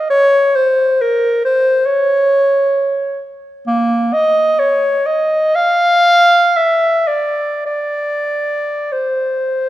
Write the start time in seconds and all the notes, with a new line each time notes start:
0.10 C#5
0.55 C5
1.01 A#4
1.45 C5
1.86 C#5
3.67 A#3
4.13 D#5
4.59 C#5
5.06 D#5
5.55 F5
6.56 E5
7.07 D5
7.66 D5
8.92 C5